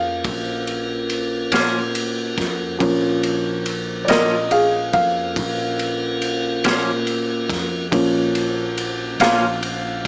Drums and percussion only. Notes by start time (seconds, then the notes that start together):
0.24 kick, ride
0.67 ride
1.10 ride
1.52 snare, ride
1.95 ride
2.38 kick, snare, ride
2.80 kick, ride
3.23 ride
3.66 ride
4.08 snare, ride
4.51 ride
4.93 kick, ride
5.36 kick, ride
5.79 ride
6.22 ride
6.64 snare, ride
7.07 ride
7.50 kick, snare, ride
7.92 kick, ride
8.35 ride
8.78 ride
9.20 snare, ride
9.63 ride